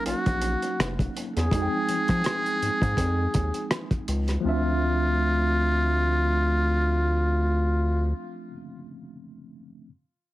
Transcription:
Already playing: tine electric piano F#3 A#3 C#4 D#4 F5
0.06 analog synth bass A#1, muted trumpet F#4, closed hi-hat
0.26 analog synth bass A#1, kick, closed hi-hat
0.42 closed hi-hat
0.62 closed hi-hat
0.79 analog synth bass F1, cross-stick, closed hi-hat
0.99 kick, closed hi-hat
1.17 closed hi-hat
1.36 analog synth bass E2, muted trumpet G#4, cross-stick, closed hi-hat
1.51 analog synth bass F2, tine electric piano F3 G#3 C4 D#4, kick, closed hi-hat
1.56 tine electric piano F#4
1.62 tine electric piano G5
1.89 analog synth bass F3, closed hi-hat
2.08 analog synth bass F3, kick, cross-stick, closed hi-hat
2.24 cross-stick, closed hi-hat
2.46 closed hi-hat
2.62 analog synth bass G#2, closed hi-hat
2.82 analog synth bass G#2, kick, closed hi-hat
2.97 analog synth bass F2, kick, closed hi-hat
3.34 analog synth bass D#2, kick, closed hi-hat
3.54 closed hi-hat
3.71 cross-stick, closed hi-hat
3.91 kick, closed hi-hat
4.08 analog synth bass C#2, closed hi-hat
4.28 cross-stick, closed hi-hat
4.40 tine electric piano F3 A3, muted trumpet F4
4.45 analog synth bass D2, tine electric piano C4 D4
4.49 tine electric piano E5

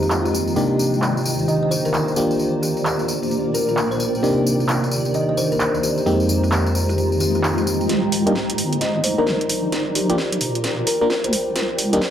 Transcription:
Already playing: fm electric piano F2 G#3 A#3 C4 D#4 G4, ambient pad G#3 F4 D#5 G5 A#5
0.02 kalimba G4, closed hi-hat, tambourine
0.10 clap, tambourine
0.25 kalimba G4, closed hi-hat, tambourine
0.33 kalimba G4, tambourine
0.47 tambourine
0.56 fm electric piano C3 A#3 D4 D#4 G4, ambient pad D#3, closed hi-hat, tambourine
0.65 ambient pad C5
0.79 tambourine
0.94 closed hi-hat, tambourine
1.02 clap, tambourine
1.17 closed hi-hat, tambourine
1.22 ambient pad D5, tambourine
1.39 closed hi-hat, tambourine
1.48 kalimba D#5, closed hi-hat, tambourine
1.63 kalimba D#5
1.71 kalimba C5, tambourine
1.85 kalimba A#4, tambourine
1.94 clap, tambourine
2.08 closed hi-hat, tambourine
2.16 fm electric piano A#3 D4 F4 G4, ambient pad A#3, tambourine
2.26 ambient pad F4
2.31 tambourine
2.39 closed hi-hat, tambourine
2.62 kalimba G4, ambient pad A#4, tambourine
2.77 closed hi-hat, tambourine
2.85 clap, tambourine
2.99 closed hi-hat, tambourine
3.05 ambient pad G5, tambourine
3.23 closed hi-hat, tambourine
3.31 closed hi-hat, tambourine
3.54 kalimba A#4, tambourine
3.69 kalimba A#4, tambourine
3.77 clap, tambourine
3.91 kalimba C5, closed hi-hat, tambourine
4.00 kalimba C5, tambourine
4.15 tambourine
4.23 fm electric piano C3 A#3 D4 D#4 G4, ambient pad D#3, closed hi-hat, tambourine
4.46 ambient pad C5, tambourine
4.60 closed hi-hat, tambourine
4.69 clap, tambourine
4.83 closed hi-hat, tambourine
4.91 tambourine
5.05 ambient pad A#5, closed hi-hat, tambourine
5.14 kalimba D#5, closed hi-hat, tambourine
5.29 kalimba D#5
5.37 kalimba C5, tambourine
5.52 kalimba A#4, tambourine
5.60 clap, tambourine
5.74 closed hi-hat, tambourine
5.83 kalimba G4, tambourine
5.98 kalimba G4, tambourine
6.06 fm electric piano F2 G#3 A#3 C4 D#4 G4, ambient pad F4, closed hi-hat, tambourine
6.20 tambourine
6.28 ambient pad G#3, tambourine
6.43 kalimba G4, closed hi-hat, tambourine
6.52 clap, tambourine
6.61 ambient pad D#5
6.66 closed hi-hat, tambourine
6.75 tambourine
6.89 kalimba G4, ambient pad G5, closed hi-hat, tambourine
6.98 closed hi-hat, tambourine
7.12 tambourine
7.20 kalimba G4, tambourine
7.35 kalimba G4, closed hi-hat, tambourine
7.44 clap, tambourine
7.58 kalimba G4, closed hi-hat, tambourine
7.67 kalimba G4, tambourine
7.81 closed hi-hat, tambourine
7.89 wobble bass C2, ambient pad D#4, snare, closed hi-hat
8.00 ambient pad C5
8.12 wobble bass C2, open hi-hat
8.26 fm electric piano A#3 D4 D#4 G4, closed hi-hat
8.33 ambient pad D5, snare
8.50 closed hi-hat
8.58 wobble bass G1, open hi-hat
8.73 closed hi-hat
8.81 kalimba D#5, snare, closed hi-hat
8.96 kalimba D#5
9.04 wobble bass C2, kalimba C5, open hi-hat
9.18 fm electric piano A#3 D4 D#4 A#4, kalimba A#4
9.26 wobble bass A#1, snare
9.41 closed hi-hat
9.49 wobble bass A#1, ambient pad F4, open hi-hat
9.56 ambient pad A#4
9.72 snare, closed hi-hat
9.95 wobble bass A#1, kalimba G4, open hi-hat
10.10 fm electric piano A#3 D4 F4 G4, closed hi-hat
10.18 snare
10.32 closed hi-hat
10.41 wobble bass A#2, ambient pad G5, open hi-hat
10.55 closed hi-hat
10.64 snare, closed hi-hat
10.87 kalimba A#4, open hi-hat
11.01 fm electric piano A#3 D4 F4 A#4, kalimba A#4
11.10 snare
11.24 wobble bass D2, kalimba C5, closed hi-hat
11.33 kalimba C5, open hi-hat
11.47 wobble bass A#1
11.55 wobble bass C2, ambient pad D#4, snare, closed hi-hat
11.75 wobble bass C2, ambient pad C5 A#5, open hi-hat
11.93 fm electric piano A#3 D4 D#4 G4, closed hi-hat
12.01 snare

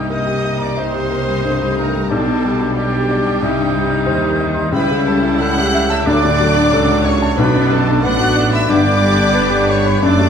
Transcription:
Already playing: grand piano C2 G2 G3 D#4, double bass section C2, cello section C3, viola section A#3 D#4, clarinet G4, violin section G4 G5, flute G6
0.09 viola section A#3 D#4, grand piano A#4, oboe D#5, violin section D#5 D#6, clarinet D#5
0.13 flute G6
0.26 grand piano G4
0.44 grand piano D#5
0.59 clarinet D5, grand piano A#5
0.63 violin section D5 D6
0.74 grand piano D#5, violin section D6, flute G6
0.78 french horn section G3 D#4, viola section A#3 D#4, clarinet C5, violin section C5 C6, oboe D#5
0.94 grand piano G4
1.11 grand piano A#4
1.28 grand piano G3
1.44 grand piano G2, viola section A3
1.62 grand piano G3
1.79 grand piano G2, violin section A#4 A#5, clarinet A#4
1.95 grand piano G3
2.09 double bass section B1, grand piano B1, cello section B2, french horn section G3 D4, viola section D4, violin section A4 A5, clarinet A4, oboe D5, flute G6
2.13 viola section G3
2.28 grand piano B2
2.44 grand piano G3
2.60 grand piano D4
2.75 viola section G3 D4, violin section G4 G5, clarinet G4, grand piano D5, oboe D5, flute G6
2.94 grand piano G4
3.11 grand piano D5
3.26 grand piano D6
3.41 grand piano C2, double bass section C2, cello section C3, french horn section G3 D#4, viola section G3 D#4, oboe D#5, flute G6
3.58 grand piano G2
3.75 grand piano G3
3.91 grand piano D#4
4.06 double bass section D#2, cello section D#3, grand piano C5
4.24 grand piano G4
4.40 grand piano D#5
4.54 grand piano C6
4.72 grand piano C#2, double bass section C#2, cello section C#3, viola section G3 E4, french horn section G3 E4, oboe E5, violin section B5, flute G6
4.76 violin section B4, clarinet B4
4.91 grand piano C#3
5.07 grand piano G3, violin section A4 A5, clarinet A4
5.22 grand piano E4
5.40 grand piano A4, violin section F#5 F#6, clarinet F#5
5.58 grand piano G4
5.74 grand piano E5
5.90 clarinet E5, violin section E5 E6, grand piano A5
6.05 double bass section D2, grand piano D2, cello section D3, viola section F#3 D4, french horn section F#3 D4, oboe D5, violin section D5 D6, clarinet D5, flute F#6
6.25 grand piano A2
6.39 grand piano F#3
6.55 grand piano D4
6.71 double bass section C#2, cello section C#3, grand piano A4
6.89 grand piano F#4
7.05 violin section C#5 C#6, clarinet C#5, grand piano D5
7.22 grand piano A5
7.37 grand piano B1, double bass section B1, cello section B2, french horn section F#3 D4, viola section B3 D4, violin section B4 B5, clarinet B4, oboe D5, flute F#6
7.55 grand piano F#2
7.70 grand piano F#3, violin section A4 A5, clarinet A4
7.88 grand piano D4
8.02 double bass section A1, cello section A2, viola section B3 D4, grand piano B4, oboe D5, violin section F#5 F#6, clarinet F#5, flute F#6
8.20 grand piano F#4
8.36 grand piano D5
8.53 violin section E5 E6, clarinet E5, grand piano B5
8.69 double bass section G1, grand piano G2, cello section G2, viola section B3 D4, french horn section B3 D4, oboe B4, clarinet D5, violin section D5 D6, flute G6
8.84 grand piano D3
9.01 grand piano G3
9.18 grand piano D4
9.33 grand piano B4
9.50 grand piano G4
9.67 clarinet C#5, violin section C#5 C#6, grand piano D5
9.86 grand piano B5
10.02 double bass section F#1, grand piano F#2, cello section F#2, french horn section A3 D4, viola section A3 D4, oboe A4, violin section D5 D6, clarinet D5, flute F#6
10.19 grand piano F#3

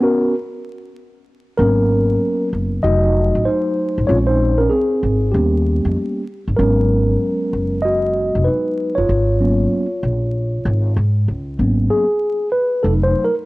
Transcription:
0.01 tine electric piano B3 C#4 F#4 A#4
1.58 upright bass G#1, tine electric piano F#3 A#3 B3 C#4 A#4
2.53 upright bass F#1
2.83 upright bass F1, tine electric piano F#3 A3 D#4 F#4 D#5
3.35 upright bass A1
3.45 tine electric piano D#4 C5
3.98 upright bass A1
4.07 upright bass A#1, tine electric piano G#3 C4 C#4 F4 C#5
4.27 tine electric piano D#4 C5
4.58 tine electric piano C#4 A#4
4.70 tine electric piano C4 G#4
5.03 upright bass G#1
5.32 upright bass D#2, tine electric piano G3 A#3 B3 C#4 G4
5.85 upright bass F2
6.48 upright bass G1
6.57 upright bass G#1, tine electric piano F#3 G#3 B3 C#4 A#4
7.53 upright bass F#1
7.82 tine electric piano F#4 D#5
8.35 upright bass F1
8.45 tine electric piano D#4 B4
8.95 upright bass F#1, tine electric piano F4 C#5
9.09 upright bass G#1
9.40 tine electric piano F#3 A#3 B3 C#4
10.03 upright bass A#1
10.65 upright bass G#1
10.96 upright bass G#2
11.28 upright bass C#2
11.58 upright bass G#1, tine electric piano F#3 A#3 B3 C#4
11.90 tine electric piano G#4
12.52 tine electric piano B4
12.83 upright bass F1, tine electric piano F#3 A3 D#4 A4
13.03 tine electric piano C5
13.24 tine electric piano A#4

